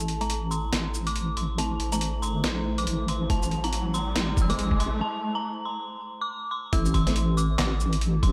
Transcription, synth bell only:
0, 0, Header, 1, 2, 480
1, 0, Start_track
1, 0, Tempo, 428571
1, 1775, Time_signature, 4, 2, 24, 8
1, 9321, End_track
2, 0, Start_track
2, 0, Title_t, "Synth bell"
2, 0, Program_c, 0, 98
2, 0, Note_on_c, 0, 81, 91
2, 235, Note_on_c, 0, 82, 96
2, 245, Note_off_c, 0, 81, 0
2, 571, Note_on_c, 0, 84, 100
2, 584, Note_off_c, 0, 82, 0
2, 1194, Note_on_c, 0, 86, 112
2, 1213, Note_off_c, 0, 84, 0
2, 1534, Note_on_c, 0, 84, 98
2, 1544, Note_off_c, 0, 86, 0
2, 1642, Note_off_c, 0, 84, 0
2, 1773, Note_on_c, 0, 81, 97
2, 2129, Note_off_c, 0, 81, 0
2, 2154, Note_on_c, 0, 82, 93
2, 2490, Note_on_c, 0, 84, 103
2, 2504, Note_off_c, 0, 82, 0
2, 3115, Note_on_c, 0, 86, 110
2, 3133, Note_off_c, 0, 84, 0
2, 3456, Note_on_c, 0, 84, 93
2, 3464, Note_off_c, 0, 86, 0
2, 3564, Note_off_c, 0, 84, 0
2, 3695, Note_on_c, 0, 81, 96
2, 4076, Note_on_c, 0, 82, 90
2, 4088, Note_off_c, 0, 81, 0
2, 4414, Note_on_c, 0, 84, 104
2, 4425, Note_off_c, 0, 82, 0
2, 4945, Note_on_c, 0, 88, 81
2, 4959, Note_off_c, 0, 84, 0
2, 5035, Note_on_c, 0, 86, 113
2, 5037, Note_off_c, 0, 88, 0
2, 5373, Note_on_c, 0, 84, 96
2, 5385, Note_off_c, 0, 86, 0
2, 5597, Note_off_c, 0, 84, 0
2, 5613, Note_on_c, 0, 81, 95
2, 5993, Note_on_c, 0, 82, 92
2, 6007, Note_off_c, 0, 81, 0
2, 6332, Note_on_c, 0, 84, 98
2, 6344, Note_off_c, 0, 82, 0
2, 6911, Note_off_c, 0, 84, 0
2, 6959, Note_on_c, 0, 86, 106
2, 7278, Note_off_c, 0, 86, 0
2, 7291, Note_on_c, 0, 86, 99
2, 7294, Note_on_c, 0, 84, 80
2, 7518, Note_off_c, 0, 84, 0
2, 7533, Note_on_c, 0, 88, 115
2, 7540, Note_off_c, 0, 86, 0
2, 7773, Note_on_c, 0, 84, 95
2, 7781, Note_off_c, 0, 88, 0
2, 8256, Note_on_c, 0, 86, 98
2, 8268, Note_off_c, 0, 84, 0
2, 8481, Note_off_c, 0, 86, 0
2, 8495, Note_on_c, 0, 86, 101
2, 9214, Note_on_c, 0, 84, 86
2, 9236, Note_off_c, 0, 86, 0
2, 9321, Note_off_c, 0, 84, 0
2, 9321, End_track
0, 0, End_of_file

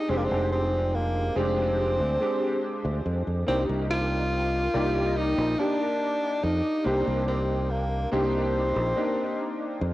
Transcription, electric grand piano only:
0, 0, Header, 1, 2, 480
1, 0, Start_track
1, 0, Tempo, 845070
1, 55, Time_signature, 4, 2, 24, 8
1, 5644, End_track
2, 0, Start_track
2, 0, Title_t, "Electric grand piano"
2, 0, Program_c, 0, 2
2, 0, Control_c, 0, 64, 127
2, 0, Note_on_c, 0, 56, 79
2, 0, Note_on_c, 0, 60, 74
2, 0, Note_on_c, 0, 62, 73
2, 0, Note_on_c, 0, 67, 86
2, 47, Note_off_c, 0, 56, 0
2, 47, Note_on_c, 0, 56, 82
2, 52, Note_off_c, 0, 60, 0
2, 52, Note_on_c, 0, 60, 75
2, 58, Note_off_c, 0, 62, 0
2, 58, Note_on_c, 0, 62, 74
2, 64, Note_off_c, 0, 67, 0
2, 64, Note_on_c, 0, 67, 92
2, 742, Note_off_c, 0, 56, 0
2, 745, Note_off_c, 0, 60, 0
2, 748, Note_off_c, 0, 62, 0
2, 751, Note_off_c, 0, 67, 0
2, 771, Note_on_c, 0, 56, 98
2, 774, Note_on_c, 0, 60, 90
2, 777, Note_on_c, 0, 62, 85
2, 780, Note_on_c, 0, 67, 103
2, 1225, Note_off_c, 0, 56, 0
2, 1226, Note_off_c, 0, 60, 0
2, 1228, Note_off_c, 0, 62, 0
2, 1229, Note_off_c, 0, 67, 0
2, 1251, Note_on_c, 0, 56, 78
2, 1255, Note_on_c, 0, 60, 70
2, 1258, Note_on_c, 0, 62, 71
2, 1260, Note_on_c, 0, 67, 88
2, 1372, Note_off_c, 0, 56, 0
2, 1373, Note_off_c, 0, 60, 0
2, 1375, Note_off_c, 0, 62, 0
2, 1376, Note_off_c, 0, 67, 0
2, 1968, Note_on_c, 0, 58, 80
2, 1973, Note_on_c, 0, 62, 74
2, 1979, Note_on_c, 0, 63, 76
2, 1983, Control_c, 0, 64, 0
2, 1985, Note_on_c, 0, 67, 89
2, 2067, Control_c, 0, 64, 127
2, 2663, Note_off_c, 0, 58, 0
2, 2665, Note_off_c, 0, 62, 0
2, 2668, Note_off_c, 0, 63, 0
2, 2671, Note_off_c, 0, 67, 0
2, 2690, Note_on_c, 0, 58, 96
2, 2694, Note_on_c, 0, 74, 86
2, 2696, Note_on_c, 0, 63, 90
2, 2699, Note_on_c, 0, 67, 106
2, 3144, Note_off_c, 0, 58, 0
2, 3146, Note_off_c, 0, 74, 0
2, 3147, Note_off_c, 0, 63, 0
2, 3148, Note_off_c, 0, 67, 0
2, 3171, Note_on_c, 0, 58, 81
2, 3173, Note_on_c, 0, 62, 74
2, 3177, Note_on_c, 0, 63, 72
2, 3180, Note_on_c, 0, 67, 85
2, 3292, Note_off_c, 0, 58, 0
2, 3293, Note_off_c, 0, 62, 0
2, 3295, Note_off_c, 0, 63, 0
2, 3296, Note_off_c, 0, 67, 0
2, 3886, Note_on_c, 0, 58, 83
2, 3892, Note_on_c, 0, 62, 78
2, 3897, Note_on_c, 0, 63, 75
2, 3903, Note_on_c, 0, 67, 89
2, 4582, Note_off_c, 0, 58, 0
2, 4585, Note_off_c, 0, 62, 0
2, 4587, Note_off_c, 0, 63, 0
2, 4591, Note_off_c, 0, 67, 0
2, 4609, Note_on_c, 0, 58, 92
2, 4612, Note_on_c, 0, 62, 85
2, 4615, Note_on_c, 0, 63, 84
2, 4618, Note_on_c, 0, 67, 105
2, 5064, Note_off_c, 0, 58, 0
2, 5065, Note_off_c, 0, 62, 0
2, 5066, Note_off_c, 0, 63, 0
2, 5068, Note_off_c, 0, 67, 0
2, 5090, Note_on_c, 0, 58, 81
2, 5093, Note_on_c, 0, 62, 72
2, 5096, Note_on_c, 0, 63, 71
2, 5099, Note_on_c, 0, 67, 86
2, 5211, Note_off_c, 0, 58, 0
2, 5212, Note_off_c, 0, 62, 0
2, 5214, Note_off_c, 0, 63, 0
2, 5215, Note_off_c, 0, 67, 0
2, 5644, End_track
0, 0, End_of_file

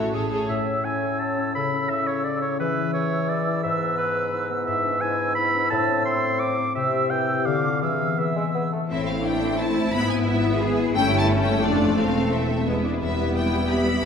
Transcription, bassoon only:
0, 0, Header, 1, 2, 480
1, 0, Start_track
1, 0, Key_signature, 3, "major"
1, 0, Tempo, 353357
1, 666, Time_signature, 3, 2, 24, 8
1, 2579, Tempo, 346620
1, 6417, Key_signature, 0, "minor"
1, 9779, Tempo, 360794
1, 12179, Tempo, 342857
1, 19388, End_track
2, 0, Start_track
2, 0, Title_t, "Bassoon"
2, 0, Program_c, 0, 70
2, 0, Note_on_c, 0, 57, 46
2, 156, Note_off_c, 0, 57, 0
2, 668, Note_on_c, 0, 45, 38
2, 2050, Note_off_c, 0, 45, 0
2, 2107, Note_on_c, 0, 49, 37
2, 3544, Note_on_c, 0, 52, 41
2, 3564, Note_off_c, 0, 49, 0
2, 4969, Note_off_c, 0, 52, 0
2, 4977, Note_on_c, 0, 44, 48
2, 7795, Note_off_c, 0, 44, 0
2, 7851, Note_on_c, 0, 45, 53
2, 9063, Note_off_c, 0, 45, 0
2, 9299, Note_on_c, 0, 48, 49
2, 9781, Note_on_c, 0, 52, 45
2, 9800, Note_off_c, 0, 48, 0
2, 10249, Note_on_c, 0, 50, 45
2, 10269, Note_off_c, 0, 52, 0
2, 10741, Note_on_c, 0, 52, 40
2, 10760, Note_off_c, 0, 50, 0
2, 11174, Note_off_c, 0, 52, 0
2, 11217, Note_on_c, 0, 52, 43
2, 11442, Note_off_c, 0, 52, 0
2, 11458, Note_on_c, 0, 56, 46
2, 11567, Note_off_c, 0, 56, 0
2, 11700, Note_on_c, 0, 59, 45
2, 11809, Note_off_c, 0, 59, 0
2, 11939, Note_on_c, 0, 57, 39
2, 12046, Note_off_c, 0, 57, 0
2, 19388, End_track
0, 0, End_of_file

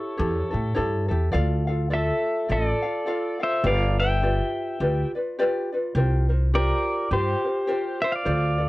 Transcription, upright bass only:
0, 0, Header, 1, 2, 480
1, 0, Start_track
1, 0, Tempo, 576369
1, 1123, Time_signature, 4, 2, 24, 8
1, 7236, End_track
2, 0, Start_track
2, 0, Title_t, "Upright bass"
2, 0, Program_c, 0, 32
2, 161, Note_on_c, 0, 40, 97
2, 343, Note_off_c, 0, 40, 0
2, 449, Note_on_c, 0, 45, 75
2, 627, Note_off_c, 0, 45, 0
2, 648, Note_on_c, 0, 43, 75
2, 896, Note_off_c, 0, 43, 0
2, 926, Note_on_c, 0, 40, 77
2, 1105, Note_off_c, 0, 40, 0
2, 1120, Note_on_c, 0, 38, 92
2, 1745, Note_off_c, 0, 38, 0
2, 2077, Note_on_c, 0, 33, 89
2, 2260, Note_off_c, 0, 33, 0
2, 3028, Note_on_c, 0, 31, 101
2, 3657, Note_off_c, 0, 31, 0
2, 3999, Note_on_c, 0, 38, 99
2, 4181, Note_off_c, 0, 38, 0
2, 4954, Note_on_c, 0, 36, 97
2, 5580, Note_off_c, 0, 36, 0
2, 5922, Note_on_c, 0, 43, 98
2, 6102, Note_off_c, 0, 43, 0
2, 6879, Note_on_c, 0, 38, 91
2, 7236, Note_off_c, 0, 38, 0
2, 7236, End_track
0, 0, End_of_file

